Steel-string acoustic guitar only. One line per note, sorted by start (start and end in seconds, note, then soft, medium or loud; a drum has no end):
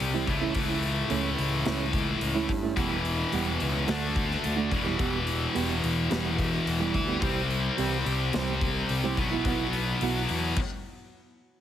0.00 muted steel-string acoustic guitar stroke soft
0.14 0.29 E3 medium
0.14 0.28 G3 medium
0.14 0.28 C4 medium
0.14 0.28 E4 medium
0.41 0.53 E3 medium
0.41 0.54 A3 medium
0.41 0.54 C#4 medium
0.41 0.54 E4 medium
0.54 0.73 E3 medium
0.54 0.73 A3 medium
0.54 0.73 C#4 medium
0.54 0.74 E4 medium
1.10 1.28 E3 medium
1.10 1.29 A3 medium
1.10 1.29 C#4 medium
1.10 1.29 E4 medium
1.65 1.84 E3 medium
1.65 1.84 A3 medium
1.65 1.84 C#4 medium
1.65 1.84 E4 medium
2.21 muted steel-string acoustic guitar stroke soft
2.35 2.54 E3 medium
2.35 2.54 A3 medium
2.35 2.54 C#4 medium
2.35 2.53 E4 medium
2.62 2.75 E3 medium
2.62 2.76 A3 medium
2.62 2.77 C#4 medium
2.62 2.77 E4 medium
2.76 2.95 E3 medium
2.76 2.95 G3 medium
2.76 2.95 B3 medium
2.76 2.95 G4 medium
3.32 3.50 E3 medium
3.32 3.51 G3 medium
3.32 3.51 B3 medium
3.32 3.51 G4 medium
3.87 4.06 D3 medium
3.87 4.06 A3 medium
3.87 4.06 D4 medium
3.87 4.06 F#4 medium
4.43 muted steel-string acoustic guitar stroke soft
4.56 4.72 D3 medium
4.56 4.72 A3 medium
4.56 4.71 D4 medium
4.56 4.71 F#4 medium
4.84 4.97 E3 medium
4.84 4.98 G3 medium
4.84 4.98 B3 medium
4.84 4.98 G4 medium
4.98 5.17 E3 medium
4.98 5.17 G3 medium
4.98 5.18 B3 medium
4.98 5.18 G4 medium
5.54 5.73 E3 medium
5.54 5.73 G3 medium
5.54 5.73 B3 medium
5.54 5.73 G4 medium
6.10 6.28 E3 medium
6.10 6.29 G3 medium
6.10 6.29 B3 medium
6.10 6.29 G4 medium
6.66 muted steel-string acoustic guitar stroke soft
6.80 6.99 E3 medium
6.80 6.99 G3 medium
6.80 6.99 B3 medium
6.80 6.98 G4 medium
7.07 7.20 E3 medium
7.07 7.20 G3 medium
7.07 7.22 B3 medium
7.07 7.22 G4 medium
7.21 7.40 E3 medium
7.21 7.40 G3 medium
7.21 7.40 C4 medium
7.21 7.41 G4 medium
7.77 7.96 E3 medium
7.77 7.96 G3 medium
7.77 7.96 C4 medium
7.77 7.96 G4 medium
8.33 8.52 E3 medium
8.33 8.52 G3 medium
8.33 8.52 C4 medium
8.33 8.52 G4 medium
8.89 muted steel-string acoustic guitar stroke soft
9.04 9.18 E3 medium
9.04 9.18 G3 medium
9.04 9.18 C4 medium
9.04 9.18 G4 medium
9.31 9.45 E3 medium
9.31 9.45 B3 medium
9.31 9.45 E4 medium
9.31 9.45 F#4 medium
9.46 9.64 E3 medium
9.46 9.64 B3 medium
9.46 9.64 E4 medium
9.46 9.64 F#4 medium
10.02 10.20 E3 medium
10.02 10.20 B3 medium
10.02 10.20 E4 medium
10.02 10.20 F#4 medium